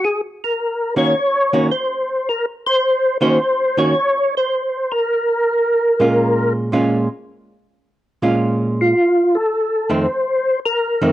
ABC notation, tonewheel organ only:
X:1
M:4/4
L:1/8
Q:"Swing" 1/4=108
K:Bbm
V:1 name="Tonewheel organ"
A B2 d3 c2 | B c2 c2 d2 c- | c B6 z | z6 z F- |
F =A2 c3 B2 |]